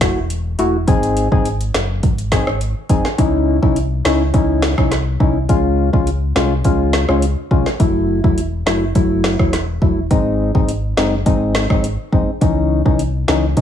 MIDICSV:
0, 0, Header, 1, 4, 480
1, 0, Start_track
1, 0, Key_signature, 4, "minor"
1, 0, Tempo, 576923
1, 730, Time_signature, 4, 2, 24, 8
1, 11324, End_track
2, 0, Start_track
2, 0, Title_t, "Synth stab"
2, 0, Program_c, 0, 62
2, 8, Note_on_c, 0, 57, 79
2, 10, Note_on_c, 0, 64, 75
2, 13, Note_on_c, 0, 66, 90
2, 157, Note_off_c, 0, 57, 0
2, 158, Note_off_c, 0, 64, 0
2, 160, Note_off_c, 0, 66, 0
2, 488, Note_on_c, 0, 57, 76
2, 491, Note_on_c, 0, 64, 72
2, 493, Note_on_c, 0, 66, 88
2, 637, Note_off_c, 0, 57, 0
2, 639, Note_off_c, 0, 64, 0
2, 640, Note_off_c, 0, 66, 0
2, 728, Note_on_c, 0, 60, 96
2, 730, Note_on_c, 0, 63, 86
2, 733, Note_on_c, 0, 68, 105
2, 1065, Note_off_c, 0, 60, 0
2, 1066, Note_off_c, 0, 63, 0
2, 1068, Note_off_c, 0, 68, 0
2, 1095, Note_on_c, 0, 60, 81
2, 1098, Note_on_c, 0, 63, 71
2, 1100, Note_on_c, 0, 68, 89
2, 1233, Note_off_c, 0, 60, 0
2, 1234, Note_off_c, 0, 63, 0
2, 1235, Note_off_c, 0, 68, 0
2, 1928, Note_on_c, 0, 60, 76
2, 1930, Note_on_c, 0, 63, 72
2, 1933, Note_on_c, 0, 68, 86
2, 2077, Note_off_c, 0, 60, 0
2, 2078, Note_off_c, 0, 63, 0
2, 2080, Note_off_c, 0, 68, 0
2, 2407, Note_on_c, 0, 60, 81
2, 2410, Note_on_c, 0, 63, 72
2, 2413, Note_on_c, 0, 68, 89
2, 2557, Note_off_c, 0, 60, 0
2, 2558, Note_off_c, 0, 63, 0
2, 2560, Note_off_c, 0, 68, 0
2, 2647, Note_on_c, 0, 61, 90
2, 2650, Note_on_c, 0, 63, 86
2, 2653, Note_on_c, 0, 64, 102
2, 2985, Note_off_c, 0, 61, 0
2, 2986, Note_off_c, 0, 63, 0
2, 2988, Note_off_c, 0, 64, 0
2, 3015, Note_on_c, 0, 61, 76
2, 3017, Note_on_c, 0, 63, 73
2, 3019, Note_on_c, 0, 64, 88
2, 3153, Note_off_c, 0, 61, 0
2, 3154, Note_off_c, 0, 63, 0
2, 3155, Note_off_c, 0, 64, 0
2, 3367, Note_on_c, 0, 61, 83
2, 3370, Note_on_c, 0, 63, 73
2, 3372, Note_on_c, 0, 64, 87
2, 3517, Note_off_c, 0, 61, 0
2, 3518, Note_off_c, 0, 63, 0
2, 3519, Note_off_c, 0, 64, 0
2, 3607, Note_on_c, 0, 61, 94
2, 3610, Note_on_c, 0, 63, 84
2, 3612, Note_on_c, 0, 64, 106
2, 3945, Note_off_c, 0, 61, 0
2, 3946, Note_off_c, 0, 63, 0
2, 3948, Note_off_c, 0, 64, 0
2, 3975, Note_on_c, 0, 61, 75
2, 3977, Note_on_c, 0, 63, 70
2, 3979, Note_on_c, 0, 64, 87
2, 4113, Note_off_c, 0, 61, 0
2, 4114, Note_off_c, 0, 63, 0
2, 4115, Note_off_c, 0, 64, 0
2, 4327, Note_on_c, 0, 61, 77
2, 4330, Note_on_c, 0, 63, 74
2, 4332, Note_on_c, 0, 64, 83
2, 4477, Note_off_c, 0, 61, 0
2, 4478, Note_off_c, 0, 63, 0
2, 4479, Note_off_c, 0, 64, 0
2, 4567, Note_on_c, 0, 56, 93
2, 4570, Note_on_c, 0, 61, 88
2, 4572, Note_on_c, 0, 65, 106
2, 4905, Note_off_c, 0, 56, 0
2, 4906, Note_off_c, 0, 61, 0
2, 4907, Note_off_c, 0, 65, 0
2, 4934, Note_on_c, 0, 56, 77
2, 4937, Note_on_c, 0, 61, 69
2, 4939, Note_on_c, 0, 65, 87
2, 5072, Note_off_c, 0, 56, 0
2, 5074, Note_off_c, 0, 61, 0
2, 5075, Note_off_c, 0, 65, 0
2, 5287, Note_on_c, 0, 56, 84
2, 5290, Note_on_c, 0, 61, 72
2, 5293, Note_on_c, 0, 65, 86
2, 5437, Note_off_c, 0, 56, 0
2, 5438, Note_off_c, 0, 61, 0
2, 5440, Note_off_c, 0, 65, 0
2, 5527, Note_on_c, 0, 56, 96
2, 5530, Note_on_c, 0, 61, 89
2, 5532, Note_on_c, 0, 65, 106
2, 5865, Note_off_c, 0, 56, 0
2, 5866, Note_off_c, 0, 61, 0
2, 5868, Note_off_c, 0, 65, 0
2, 5895, Note_on_c, 0, 56, 78
2, 5897, Note_on_c, 0, 61, 70
2, 5899, Note_on_c, 0, 65, 83
2, 6033, Note_off_c, 0, 56, 0
2, 6034, Note_off_c, 0, 61, 0
2, 6035, Note_off_c, 0, 65, 0
2, 6247, Note_on_c, 0, 56, 79
2, 6250, Note_on_c, 0, 61, 73
2, 6252, Note_on_c, 0, 65, 86
2, 6397, Note_off_c, 0, 56, 0
2, 6398, Note_off_c, 0, 61, 0
2, 6399, Note_off_c, 0, 65, 0
2, 6487, Note_on_c, 0, 54, 91
2, 6489, Note_on_c, 0, 57, 88
2, 6492, Note_on_c, 0, 64, 103
2, 6825, Note_off_c, 0, 54, 0
2, 6826, Note_off_c, 0, 57, 0
2, 6827, Note_off_c, 0, 64, 0
2, 6854, Note_on_c, 0, 54, 79
2, 6857, Note_on_c, 0, 57, 72
2, 6859, Note_on_c, 0, 64, 86
2, 6992, Note_off_c, 0, 54, 0
2, 6993, Note_off_c, 0, 57, 0
2, 6995, Note_off_c, 0, 64, 0
2, 7207, Note_on_c, 0, 54, 83
2, 7209, Note_on_c, 0, 57, 74
2, 7211, Note_on_c, 0, 64, 93
2, 7357, Note_off_c, 0, 54, 0
2, 7358, Note_off_c, 0, 57, 0
2, 7359, Note_off_c, 0, 64, 0
2, 7447, Note_on_c, 0, 54, 98
2, 7449, Note_on_c, 0, 57, 89
2, 7452, Note_on_c, 0, 64, 106
2, 7785, Note_off_c, 0, 54, 0
2, 7786, Note_off_c, 0, 57, 0
2, 7787, Note_off_c, 0, 64, 0
2, 7815, Note_on_c, 0, 54, 76
2, 7817, Note_on_c, 0, 57, 66
2, 7820, Note_on_c, 0, 64, 83
2, 7953, Note_off_c, 0, 54, 0
2, 7954, Note_off_c, 0, 57, 0
2, 7955, Note_off_c, 0, 64, 0
2, 8167, Note_on_c, 0, 54, 78
2, 8170, Note_on_c, 0, 57, 72
2, 8172, Note_on_c, 0, 64, 86
2, 8317, Note_off_c, 0, 54, 0
2, 8318, Note_off_c, 0, 57, 0
2, 8319, Note_off_c, 0, 64, 0
2, 8408, Note_on_c, 0, 56, 92
2, 8411, Note_on_c, 0, 60, 87
2, 8413, Note_on_c, 0, 63, 101
2, 8745, Note_off_c, 0, 56, 0
2, 8747, Note_off_c, 0, 60, 0
2, 8748, Note_off_c, 0, 63, 0
2, 8774, Note_on_c, 0, 56, 77
2, 8777, Note_on_c, 0, 60, 70
2, 8779, Note_on_c, 0, 63, 87
2, 8912, Note_off_c, 0, 56, 0
2, 8914, Note_off_c, 0, 60, 0
2, 8915, Note_off_c, 0, 63, 0
2, 9127, Note_on_c, 0, 56, 81
2, 9130, Note_on_c, 0, 60, 75
2, 9132, Note_on_c, 0, 63, 86
2, 9277, Note_off_c, 0, 56, 0
2, 9278, Note_off_c, 0, 60, 0
2, 9279, Note_off_c, 0, 63, 0
2, 9367, Note_on_c, 0, 56, 96
2, 9370, Note_on_c, 0, 60, 92
2, 9372, Note_on_c, 0, 63, 107
2, 9705, Note_off_c, 0, 56, 0
2, 9706, Note_off_c, 0, 60, 0
2, 9707, Note_off_c, 0, 63, 0
2, 9734, Note_on_c, 0, 56, 75
2, 9736, Note_on_c, 0, 60, 66
2, 9739, Note_on_c, 0, 63, 82
2, 9872, Note_off_c, 0, 56, 0
2, 9873, Note_off_c, 0, 60, 0
2, 9875, Note_off_c, 0, 63, 0
2, 10087, Note_on_c, 0, 56, 78
2, 10089, Note_on_c, 0, 60, 73
2, 10092, Note_on_c, 0, 63, 89
2, 10237, Note_off_c, 0, 56, 0
2, 10238, Note_off_c, 0, 60, 0
2, 10239, Note_off_c, 0, 63, 0
2, 10327, Note_on_c, 0, 52, 96
2, 10329, Note_on_c, 0, 61, 83
2, 10331, Note_on_c, 0, 63, 97
2, 10665, Note_off_c, 0, 52, 0
2, 10666, Note_off_c, 0, 61, 0
2, 10667, Note_off_c, 0, 63, 0
2, 10694, Note_on_c, 0, 52, 78
2, 10697, Note_on_c, 0, 61, 73
2, 10699, Note_on_c, 0, 63, 87
2, 10832, Note_off_c, 0, 52, 0
2, 10834, Note_off_c, 0, 61, 0
2, 10835, Note_off_c, 0, 63, 0
2, 11048, Note_on_c, 0, 52, 81
2, 11050, Note_on_c, 0, 61, 75
2, 11052, Note_on_c, 0, 63, 91
2, 11197, Note_off_c, 0, 52, 0
2, 11198, Note_off_c, 0, 61, 0
2, 11199, Note_off_c, 0, 63, 0
2, 11287, Note_on_c, 0, 52, 91
2, 11290, Note_on_c, 0, 61, 90
2, 11292, Note_on_c, 0, 63, 107
2, 11324, Note_off_c, 0, 52, 0
2, 11324, Note_off_c, 0, 61, 0
2, 11324, Note_off_c, 0, 63, 0
2, 11324, End_track
3, 0, Start_track
3, 0, Title_t, "Sub bass"
3, 0, Program_c, 1, 38
3, 0, Note_on_c, 1, 30, 92
3, 108, Note_off_c, 1, 30, 0
3, 137, Note_on_c, 1, 28, 98
3, 461, Note_off_c, 1, 28, 0
3, 490, Note_on_c, 1, 28, 96
3, 710, Note_off_c, 1, 28, 0
3, 730, Note_on_c, 1, 32, 105
3, 1068, Note_off_c, 1, 32, 0
3, 1097, Note_on_c, 1, 32, 85
3, 1421, Note_off_c, 1, 32, 0
3, 1450, Note_on_c, 1, 30, 90
3, 1670, Note_off_c, 1, 30, 0
3, 1691, Note_on_c, 1, 32, 100
3, 2028, Note_off_c, 1, 32, 0
3, 2057, Note_on_c, 1, 32, 89
3, 2278, Note_off_c, 1, 32, 0
3, 2409, Note_on_c, 1, 30, 91
3, 2526, Note_off_c, 1, 30, 0
3, 2651, Note_on_c, 1, 37, 106
3, 2988, Note_off_c, 1, 37, 0
3, 3017, Note_on_c, 1, 36, 83
3, 3341, Note_off_c, 1, 36, 0
3, 3370, Note_on_c, 1, 37, 98
3, 3590, Note_off_c, 1, 37, 0
3, 3611, Note_on_c, 1, 37, 97
3, 3948, Note_off_c, 1, 37, 0
3, 3976, Note_on_c, 1, 36, 92
3, 4301, Note_off_c, 1, 36, 0
3, 4328, Note_on_c, 1, 36, 89
3, 4550, Note_off_c, 1, 36, 0
3, 4570, Note_on_c, 1, 37, 113
3, 4908, Note_off_c, 1, 37, 0
3, 4937, Note_on_c, 1, 37, 88
3, 5261, Note_off_c, 1, 37, 0
3, 5289, Note_on_c, 1, 36, 99
3, 5510, Note_off_c, 1, 36, 0
3, 5531, Note_on_c, 1, 37, 95
3, 5868, Note_off_c, 1, 37, 0
3, 5896, Note_on_c, 1, 37, 89
3, 6117, Note_off_c, 1, 37, 0
3, 6248, Note_on_c, 1, 36, 90
3, 6366, Note_off_c, 1, 36, 0
3, 6490, Note_on_c, 1, 30, 116
3, 6827, Note_off_c, 1, 30, 0
3, 6856, Note_on_c, 1, 28, 84
3, 7181, Note_off_c, 1, 28, 0
3, 7209, Note_on_c, 1, 30, 95
3, 7430, Note_off_c, 1, 30, 0
3, 7451, Note_on_c, 1, 30, 88
3, 7788, Note_off_c, 1, 30, 0
3, 7816, Note_on_c, 1, 28, 97
3, 8141, Note_off_c, 1, 28, 0
3, 8168, Note_on_c, 1, 28, 93
3, 8389, Note_off_c, 1, 28, 0
3, 8410, Note_on_c, 1, 32, 103
3, 8747, Note_off_c, 1, 32, 0
3, 8777, Note_on_c, 1, 32, 88
3, 9101, Note_off_c, 1, 32, 0
3, 9130, Note_on_c, 1, 30, 87
3, 9350, Note_off_c, 1, 30, 0
3, 9371, Note_on_c, 1, 32, 96
3, 9708, Note_off_c, 1, 32, 0
3, 9736, Note_on_c, 1, 32, 91
3, 9957, Note_off_c, 1, 32, 0
3, 10088, Note_on_c, 1, 30, 89
3, 10206, Note_off_c, 1, 30, 0
3, 10330, Note_on_c, 1, 37, 107
3, 10667, Note_off_c, 1, 37, 0
3, 10697, Note_on_c, 1, 36, 81
3, 11021, Note_off_c, 1, 36, 0
3, 11049, Note_on_c, 1, 37, 96
3, 11270, Note_off_c, 1, 37, 0
3, 11291, Note_on_c, 1, 37, 101
3, 11324, Note_off_c, 1, 37, 0
3, 11324, End_track
4, 0, Start_track
4, 0, Title_t, "Drums"
4, 8, Note_on_c, 9, 38, 127
4, 10, Note_on_c, 9, 36, 97
4, 11, Note_on_c, 9, 42, 85
4, 92, Note_off_c, 9, 38, 0
4, 93, Note_off_c, 9, 36, 0
4, 94, Note_off_c, 9, 42, 0
4, 251, Note_on_c, 9, 42, 87
4, 334, Note_off_c, 9, 42, 0
4, 488, Note_on_c, 9, 42, 73
4, 572, Note_off_c, 9, 42, 0
4, 729, Note_on_c, 9, 42, 74
4, 730, Note_on_c, 9, 36, 114
4, 812, Note_off_c, 9, 42, 0
4, 813, Note_off_c, 9, 36, 0
4, 857, Note_on_c, 9, 42, 55
4, 940, Note_off_c, 9, 42, 0
4, 970, Note_on_c, 9, 42, 81
4, 1054, Note_off_c, 9, 42, 0
4, 1097, Note_on_c, 9, 36, 97
4, 1180, Note_off_c, 9, 36, 0
4, 1210, Note_on_c, 9, 42, 73
4, 1293, Note_off_c, 9, 42, 0
4, 1336, Note_on_c, 9, 42, 58
4, 1419, Note_off_c, 9, 42, 0
4, 1451, Note_on_c, 9, 38, 105
4, 1452, Note_on_c, 9, 42, 90
4, 1535, Note_off_c, 9, 38, 0
4, 1535, Note_off_c, 9, 42, 0
4, 1689, Note_on_c, 9, 42, 57
4, 1691, Note_on_c, 9, 36, 97
4, 1772, Note_off_c, 9, 42, 0
4, 1775, Note_off_c, 9, 36, 0
4, 1817, Note_on_c, 9, 42, 52
4, 1900, Note_off_c, 9, 42, 0
4, 1929, Note_on_c, 9, 38, 127
4, 1930, Note_on_c, 9, 36, 96
4, 1931, Note_on_c, 9, 42, 80
4, 2012, Note_off_c, 9, 38, 0
4, 2013, Note_off_c, 9, 36, 0
4, 2014, Note_off_c, 9, 42, 0
4, 2056, Note_on_c, 9, 37, 99
4, 2140, Note_off_c, 9, 37, 0
4, 2171, Note_on_c, 9, 42, 80
4, 2254, Note_off_c, 9, 42, 0
4, 2408, Note_on_c, 9, 42, 78
4, 2409, Note_on_c, 9, 36, 101
4, 2492, Note_off_c, 9, 36, 0
4, 2492, Note_off_c, 9, 42, 0
4, 2537, Note_on_c, 9, 38, 72
4, 2620, Note_off_c, 9, 38, 0
4, 2649, Note_on_c, 9, 42, 70
4, 2651, Note_on_c, 9, 36, 107
4, 2733, Note_off_c, 9, 42, 0
4, 2734, Note_off_c, 9, 36, 0
4, 3017, Note_on_c, 9, 36, 96
4, 3100, Note_off_c, 9, 36, 0
4, 3130, Note_on_c, 9, 42, 69
4, 3213, Note_off_c, 9, 42, 0
4, 3371, Note_on_c, 9, 38, 106
4, 3454, Note_off_c, 9, 38, 0
4, 3609, Note_on_c, 9, 42, 60
4, 3611, Note_on_c, 9, 36, 104
4, 3692, Note_off_c, 9, 42, 0
4, 3694, Note_off_c, 9, 36, 0
4, 3848, Note_on_c, 9, 38, 127
4, 3931, Note_off_c, 9, 38, 0
4, 3976, Note_on_c, 9, 36, 97
4, 3976, Note_on_c, 9, 37, 95
4, 4059, Note_off_c, 9, 36, 0
4, 4059, Note_off_c, 9, 37, 0
4, 4089, Note_on_c, 9, 38, 62
4, 4090, Note_on_c, 9, 42, 81
4, 4173, Note_off_c, 9, 38, 0
4, 4174, Note_off_c, 9, 42, 0
4, 4328, Note_on_c, 9, 36, 97
4, 4412, Note_off_c, 9, 36, 0
4, 4569, Note_on_c, 9, 42, 70
4, 4570, Note_on_c, 9, 36, 108
4, 4652, Note_off_c, 9, 42, 0
4, 4653, Note_off_c, 9, 36, 0
4, 4937, Note_on_c, 9, 36, 92
4, 5020, Note_off_c, 9, 36, 0
4, 5050, Note_on_c, 9, 42, 69
4, 5133, Note_off_c, 9, 42, 0
4, 5290, Note_on_c, 9, 38, 103
4, 5373, Note_off_c, 9, 38, 0
4, 5528, Note_on_c, 9, 42, 60
4, 5531, Note_on_c, 9, 36, 96
4, 5612, Note_off_c, 9, 42, 0
4, 5614, Note_off_c, 9, 36, 0
4, 5768, Note_on_c, 9, 38, 125
4, 5851, Note_off_c, 9, 38, 0
4, 5896, Note_on_c, 9, 37, 97
4, 5979, Note_off_c, 9, 37, 0
4, 6010, Note_on_c, 9, 42, 79
4, 6093, Note_off_c, 9, 42, 0
4, 6248, Note_on_c, 9, 36, 98
4, 6331, Note_off_c, 9, 36, 0
4, 6375, Note_on_c, 9, 38, 65
4, 6458, Note_off_c, 9, 38, 0
4, 6488, Note_on_c, 9, 42, 71
4, 6490, Note_on_c, 9, 36, 112
4, 6571, Note_off_c, 9, 42, 0
4, 6573, Note_off_c, 9, 36, 0
4, 6856, Note_on_c, 9, 36, 97
4, 6940, Note_off_c, 9, 36, 0
4, 6969, Note_on_c, 9, 42, 67
4, 7053, Note_off_c, 9, 42, 0
4, 7211, Note_on_c, 9, 38, 105
4, 7294, Note_off_c, 9, 38, 0
4, 7448, Note_on_c, 9, 42, 59
4, 7451, Note_on_c, 9, 36, 98
4, 7531, Note_off_c, 9, 42, 0
4, 7534, Note_off_c, 9, 36, 0
4, 7688, Note_on_c, 9, 38, 126
4, 7771, Note_off_c, 9, 38, 0
4, 7816, Note_on_c, 9, 36, 99
4, 7816, Note_on_c, 9, 37, 92
4, 7899, Note_off_c, 9, 36, 0
4, 7899, Note_off_c, 9, 37, 0
4, 7930, Note_on_c, 9, 38, 63
4, 7930, Note_on_c, 9, 42, 81
4, 8013, Note_off_c, 9, 38, 0
4, 8014, Note_off_c, 9, 42, 0
4, 8168, Note_on_c, 9, 36, 97
4, 8251, Note_off_c, 9, 36, 0
4, 8409, Note_on_c, 9, 42, 69
4, 8410, Note_on_c, 9, 36, 107
4, 8492, Note_off_c, 9, 42, 0
4, 8493, Note_off_c, 9, 36, 0
4, 8777, Note_on_c, 9, 36, 98
4, 8860, Note_off_c, 9, 36, 0
4, 8890, Note_on_c, 9, 42, 68
4, 8973, Note_off_c, 9, 42, 0
4, 9130, Note_on_c, 9, 38, 101
4, 9214, Note_off_c, 9, 38, 0
4, 9368, Note_on_c, 9, 42, 58
4, 9371, Note_on_c, 9, 36, 97
4, 9452, Note_off_c, 9, 42, 0
4, 9454, Note_off_c, 9, 36, 0
4, 9607, Note_on_c, 9, 38, 126
4, 9691, Note_off_c, 9, 38, 0
4, 9736, Note_on_c, 9, 36, 96
4, 9736, Note_on_c, 9, 37, 95
4, 9819, Note_off_c, 9, 36, 0
4, 9819, Note_off_c, 9, 37, 0
4, 9850, Note_on_c, 9, 42, 82
4, 9933, Note_off_c, 9, 42, 0
4, 10088, Note_on_c, 9, 36, 95
4, 10171, Note_off_c, 9, 36, 0
4, 10329, Note_on_c, 9, 42, 71
4, 10330, Note_on_c, 9, 36, 108
4, 10412, Note_off_c, 9, 42, 0
4, 10413, Note_off_c, 9, 36, 0
4, 10697, Note_on_c, 9, 36, 98
4, 10780, Note_off_c, 9, 36, 0
4, 10810, Note_on_c, 9, 42, 66
4, 10893, Note_off_c, 9, 42, 0
4, 11051, Note_on_c, 9, 38, 101
4, 11134, Note_off_c, 9, 38, 0
4, 11288, Note_on_c, 9, 42, 57
4, 11291, Note_on_c, 9, 36, 99
4, 11324, Note_off_c, 9, 36, 0
4, 11324, Note_off_c, 9, 42, 0
4, 11324, End_track
0, 0, End_of_file